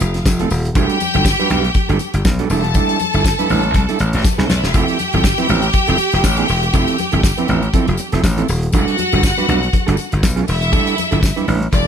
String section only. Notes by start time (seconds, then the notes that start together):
Already playing: F4 F5
0.75 G4 G5
2.50 A4 A5
4.16 G3 G4
4.24 A3 A4
4.32 B3 B4
4.40 C4 C5
4.49 D4 D5
4.57 E4 E5
4.66 F4 F5
4.73 G4 G5
8.73 F#4 F#5
10.48 E4 E5
11.73 D4 D5